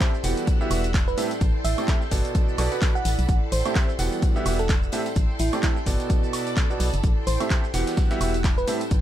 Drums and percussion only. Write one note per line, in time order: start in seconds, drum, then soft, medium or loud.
0.00 kick loud
0.00 snare loud
0.00 clap loud
0.00 closed hi-hat medium
0.00 tambourine soft
0.00 cabasa soft
0.14 snare soft
0.14 cabasa soft
0.24 closed hi-hat medium
0.24 open hi-hat loud
0.24 tambourine loud
0.24 cabasa medium
0.37 closed hi-hat medium
0.37 tambourine medium
0.37 cabasa soft
0.47 kick loud
0.47 closed hi-hat medium
0.47 tambourine soft
0.47 cabasa soft
0.61 cabasa soft
0.71 open hi-hat loud
0.71 open hi-hat medium
0.71 tambourine loud
0.71 cabasa medium
0.71 high woodblock medium
0.83 closed hi-hat soft
0.83 closed hi-hat medium
0.83 tambourine medium
0.83 cabasa soft
0.94 kick loud
0.94 snare loud
0.94 clap loud
0.94 closed hi-hat medium
0.94 tambourine soft
0.94 cabasa soft
1.08 cabasa soft
1.18 closed hi-hat medium
1.18 open hi-hat loud
1.18 tambourine loud
1.18 cabasa medium
1.31 snare soft
1.31 closed hi-hat medium
1.31 tambourine medium
1.31 cabasa soft
1.41 kick loud
1.41 closed hi-hat medium
1.41 tambourine soft
1.41 cabasa soft
1.65 closed hi-hat medium
1.65 open hi-hat loud
1.65 tambourine loud
1.65 cabasa medium
1.78 closed hi-hat medium
1.78 tambourine medium
1.78 cabasa soft
1.78 high woodblock medium
1.88 kick loud
1.88 snare loud
1.88 clap loud
1.88 closed hi-hat medium
1.88 cabasa soft
2.02 snare medium
2.02 cabasa soft
2.11 kick medium
2.11 snare medium
2.11 closed hi-hat medium
2.11 open hi-hat loud
2.11 tambourine loud
2.11 cabasa medium
2.24 closed hi-hat medium
2.24 tambourine medium
2.24 cabasa soft
2.35 kick loud
2.35 closed hi-hat medium
2.35 tambourine soft
2.35 cabasa soft
2.49 cabasa soft
2.58 snare soft
2.58 closed hi-hat medium
2.58 open hi-hat loud
2.58 tambourine medium
2.58 cabasa medium
2.58 high woodblock medium
2.72 closed hi-hat medium
2.72 tambourine medium
2.72 cabasa soft
2.82 kick loud
2.82 snare loud
2.82 clap loud
2.82 closed hi-hat medium
2.82 tambourine soft
2.82 cabasa soft
2.96 cabasa soft
3.05 snare medium
3.05 closed hi-hat medium
3.05 open hi-hat loud
3.05 tambourine loud
3.05 cabasa medium
3.19 closed hi-hat medium
3.19 closed hi-hat soft
3.19 tambourine medium
3.19 cabasa soft
3.29 kick loud
3.29 closed hi-hat medium
3.29 tambourine soft
3.29 cabasa soft
3.52 closed hi-hat medium
3.52 open hi-hat loud
3.52 tambourine medium
3.52 cabasa medium
3.66 closed hi-hat medium
3.66 tambourine medium
3.66 cabasa soft
3.66 high woodblock medium
3.75 kick loud
3.75 snare loud
3.75 clap loud
3.75 closed hi-hat medium
3.75 tambourine soft
3.75 cabasa soft
3.89 snare soft
3.89 cabasa soft
3.99 closed hi-hat medium
3.99 open hi-hat loud
3.99 tambourine loud
3.99 cabasa medium
4.12 closed hi-hat medium
4.12 tambourine soft
4.12 cabasa soft
4.22 kick loud
4.22 closed hi-hat medium
4.22 tambourine soft
4.22 cabasa soft
4.36 cabasa soft
4.46 open hi-hat loud
4.46 open hi-hat medium
4.46 tambourine medium
4.46 cabasa medium
4.46 high woodblock medium
4.59 closed hi-hat medium
4.59 closed hi-hat soft
4.59 tambourine medium
4.59 cabasa soft
4.69 kick loud
4.69 snare loud
4.69 clap loud
4.69 closed hi-hat medium
4.69 tambourine soft
4.69 cabasa soft
4.83 cabasa soft
4.92 closed hi-hat medium
4.92 open hi-hat loud
4.92 tambourine medium
4.92 cabasa medium
5.06 snare soft
5.06 closed hi-hat medium
5.06 tambourine medium
5.06 cabasa soft
5.16 kick loud
5.16 closed hi-hat medium
5.16 tambourine soft
5.16 cabasa soft
5.39 closed hi-hat medium
5.39 open hi-hat loud
5.39 tambourine medium
5.39 cabasa medium
5.52 closed hi-hat medium
5.52 tambourine medium
5.52 cabasa soft
5.52 high woodblock medium
5.63 kick loud
5.63 snare loud
5.63 clap loud
5.63 closed hi-hat medium
5.63 tambourine soft
5.63 cabasa soft
5.76 snare medium
5.76 cabasa soft
5.86 kick medium
5.86 snare medium
5.86 closed hi-hat medium
5.86 open hi-hat loud
5.86 tambourine loud
5.86 cabasa medium
6.00 closed hi-hat medium
6.00 tambourine medium
6.00 cabasa soft
6.10 kick loud
6.10 closed hi-hat medium
6.10 tambourine soft
6.10 cabasa soft
6.24 cabasa soft
6.33 snare soft
6.33 closed hi-hat medium
6.33 open hi-hat loud
6.33 tambourine loud
6.33 cabasa medium
6.33 high woodblock medium
6.47 closed hi-hat medium
6.47 tambourine medium
6.47 cabasa soft
6.57 kick loud
6.57 snare loud
6.57 clap loud
6.57 closed hi-hat medium
6.57 cabasa soft
6.70 cabasa soft
6.80 snare medium
6.80 closed hi-hat medium
6.80 open hi-hat loud
6.80 tambourine medium
6.80 cabasa medium
6.93 closed hi-hat soft
6.93 closed hi-hat medium
6.93 tambourine medium
6.93 cabasa soft
7.03 kick loud
7.03 closed hi-hat medium
7.03 tambourine soft
7.03 cabasa soft
7.27 closed hi-hat medium
7.27 open hi-hat loud
7.27 tambourine medium
7.27 cabasa medium
7.40 closed hi-hat medium
7.40 tambourine medium
7.40 cabasa soft
7.40 high woodblock medium
7.50 kick loud
7.50 snare loud
7.50 clap loud
7.50 closed hi-hat medium
7.50 cabasa soft
7.64 snare soft
7.64 cabasa soft
7.74 snare loud
7.74 closed hi-hat medium
7.74 open hi-hat loud
7.74 tambourine medium
7.74 cabasa medium
7.87 snare loud
7.87 closed hi-hat medium
7.87 tambourine medium
7.87 cabasa soft
7.97 kick loud
7.97 snare loud
7.97 closed hi-hat medium
7.97 tambourine soft
7.97 cabasa soft
8.11 snare loud
8.11 closed hi-hat medium
8.11 cabasa soft
8.21 open hi-hat medium
8.21 open hi-hat loud
8.21 tambourine medium
8.21 cabasa medium
8.21 high woodblock medium
8.34 closed hi-hat soft
8.34 closed hi-hat medium
8.34 tambourine soft
8.34 cabasa soft
8.44 kick loud
8.44 snare loud
8.44 clap loud
8.44 closed hi-hat medium
8.44 cabasa soft
8.58 cabasa soft
8.67 closed hi-hat medium
8.67 open hi-hat loud
8.67 tambourine loud
8.67 cabasa medium
8.81 closed hi-hat medium
8.81 tambourine soft
8.81 cabasa soft
8.91 kick loud
8.91 closed hi-hat medium
8.91 tambourine soft
8.91 cabasa soft